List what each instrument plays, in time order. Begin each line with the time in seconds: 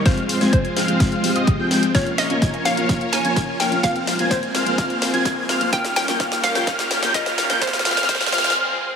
0.05 felt piano F3 G#3 C4 F4, string section F3 G#3 C4 F4 C5, supersaw synth G#3 C4 F4 C5 F5, synth pluck C5, analog synth lead F6, kick, snare, closed hi-hat
0.17 closed hi-hat
0.29 open hi-hat
0.40 felt piano F3 G#3 C4 F4, supersaw synth G#3 C4 F4 C5 G#5, analog synth lead G#6, snare, closed hi-hat
0.53 synth pluck C5, kick, closed hi-hat
0.65 closed hi-hat
0.76 supersaw synth G#3 C4 F4 C5 F5, analog synth lead F6, snare, open hi-hat
0.88 felt piano F3 G#3 C4 F4, closed hi-hat
1.00 kick, snare, closed hi-hat
1.12 supersaw synth G#3 C4 F4 C5 F5, analog synth lead F6, closed hi-hat
1.23 felt piano F3 G#3 C4 G4, open hi-hat
1.36 supersaw synth G#3 C4 F4 C5 D#5, analog synth lead D#6, closed hi-hat
1.47 kick, closed hi-hat
1.59 felt piano F3 G#3 C4 G#4, supersaw synth G#3 C4 F4 C5 G5, analog synth lead G6
1.71 snare, open hi-hat
1.83 closed hi-hat
1.94 felt piano F3 A#3 C#4 F4, string section F3 A#3 C#4 A#4 C#5, supersaw synth A#3 C#4 F4 C#5 F5, synth pluck C#5, analog synth lead F6, kick, snare, closed hi-hat, riser
2.06 closed hi-hat
2.18 synth pluck D#5, snare, open hi-hat
2.29 felt piano F3 A#3 C#4 F4, supersaw synth A#3 C#4 F4 C#5 G#5, analog synth lead G#6, closed hi-hat
2.42 kick, snare, closed hi-hat
2.54 closed hi-hat
2.65 supersaw synth A#3 C#4 F4 C#5 F5, synth pluck F5, analog synth lead F6, snare, open hi-hat
2.77 felt piano F3 A#3 C#4 F4, closed hi-hat
2.89 felt piano F3 A#3 C#4 F4, supersaw synth A#3 C#4 F4 C#5 F5, analog synth lead F6, kick, snare, closed hi-hat
3.01 closed hi-hat
3.13 synth pluck G#5, snare, open hi-hat
3.24 felt piano F3 A#3 C#4 F4, supersaw synth A#3 C#4 F4 C#5 G#5, analog synth lead G#6, closed hi-hat
3.36 kick, snare, closed hi-hat
3.60 supersaw synth A#3 C#4 F4 C#5 F5, synth pluck G5, analog synth lead F6, snare, open hi-hat
3.71 felt piano F3 A#3 C#4 F4, closed hi-hat
3.83 felt piano F3 A#3 C4 F4, string section G#3 C4 G#4 C5, supersaw synth A#3 C4 F4 C5 F5, synth pluck F5, kick, snare, closed hi-hat
3.96 closed hi-hat
4.07 snare, open hi-hat
4.18 felt piano F3 A#3 C4 F4, supersaw synth A#3 C4 F4 C5 G#5, analog synth lead G#6, closed hi-hat
4.31 synth pluck C5, kick, snare, closed hi-hat
4.43 closed hi-hat
4.54 supersaw synth A#3 C4 F4 C5 F5, analog synth lead F6, snare, open hi-hat
4.66 felt piano F3 A#3 C4 F4, closed hi-hat
4.78 felt piano F3 A#3 C4 F4, supersaw synth A#3 C4 F4 C5 F5, analog synth lead F6, kick, snare, closed hi-hat
4.90 closed hi-hat
5.02 snare, open hi-hat
5.13 felt piano F3 A#3 C4 F4, supersaw synth A#3 C4 F4 C5 G#5, analog synth lead G#6, closed hi-hat
5.25 kick, snare, closed hi-hat
5.49 supersaw synth A#3 C4 F4 C5 F5, analog synth lead F6, snare, open hi-hat
5.60 felt piano F3 A#3 C4 F4, closed hi-hat
5.72 string section D#3 G3 A#3 G4 A#4, felt piano F3 A#3 C#4 F4, supersaw synth A#3 C#4 F4 C#5 F5, synth pluck G5, kick, snare, closed hi-hat
5.85 snare, closed hi-hat
5.96 synth pluck G5, snare, open hi-hat
6.08 felt piano F3 A#3 C#4 F4, supersaw synth A#3 C#4 F4 C#5 G5, analog synth lead G6, snare, closed hi-hat
6.19 felt piano F3 A#3 C#4 F4, supersaw synth A#3 C#4 F4 C#5 F5, analog synth lead F6, kick, snare, closed hi-hat
6.32 snare, closed hi-hat
6.44 synth pluck F5, snare, open hi-hat
6.55 felt piano F3 A#3 C#4 F4, supersaw synth A#3 C#4 F4 C#5 G5, analog synth lead G6, snare, closed hi-hat
6.67 felt piano F3 C#4, supersaw synth A#3 C#4 F4 C#5 F5, analog synth lead F6, kick, snare, closed hi-hat
6.79 snare, closed hi-hat
6.91 snare, open hi-hat
7.02 felt piano F3 A#3 C#4 F4, supersaw synth A#3 C#4 F4 C#5 G5, analog synth lead G6, snare, closed hi-hat
7.14 felt piano F3 A#3 C#4 F4, supersaw synth A#3 C#4 F4 C#5 F5, synth pluck D#5, analog synth lead F6, kick, snare, closed hi-hat
7.26 snare
7.38 snare, open hi-hat
7.49 felt piano F3 A#3 C#4 F4, supersaw synth A#3 C#4 F4 C#5 G5, analog synth lead G6, snare, closed hi-hat
7.61 felt piano F3 C4, string section F3 G#3 C4 G#4 C5, supersaw synth A#3 C4 F4 C5 F5, synth pluck C5, analog synth lead F6, kick, snare, closed hi-hat
7.67 snare
7.73 snare, closed hi-hat
7.79 snare
7.85 felt piano F3 A#3 C4 F4, supersaw synth A#3 C4 F4 C5 F5, analog synth lead F6, snare, open hi-hat
7.91 snare
7.97 snare, closed hi-hat
8.03 snare
8.08 felt piano F3 A#3 C4 F4, supersaw synth A#3 C4 F4 C5 F5, synth pluck C5, analog synth lead F6, kick, snare, closed hi-hat
8.15 snare
8.21 snare, closed hi-hat
8.27 snare
8.32 felt piano F3 A#3 C4 F4, supersaw synth A#3 C4 F4 C5 F5, analog synth lead F6, snare, open hi-hat
8.38 snare
8.44 snare, closed hi-hat
8.50 snare